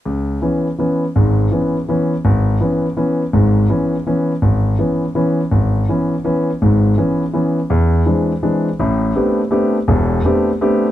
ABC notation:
X:1
M:3/4
L:1/8
Q:"Swing" 1/4=165
K:C#m
V:1 name="Grand piano"
C,,2 [E,B,C] z [E,B,C] z | [G,,,G,,]2 [E,B,C] z [E,B,C] z | G,,,2 [E,B,C] z [E,B,C] z | [G,,,G,,]2 [E,B,C] z [E,B,C] z |
G,,,2 [E,B,C] z [E,B,C] z | G,,,2 [E,B,C] z [E,B,C] z | [G,,,G,,]2 [E,B,C] z [E,B,C] z | E,,2 [E,G,^B,=D] z [E,G,B,D] z |
[K:Am] [A,,,A,,]2 [A,B,CDG] z [A,B,CDG] z | [E,,,E,,]2 [A,B,CDG] z [A,B,CDG] z |]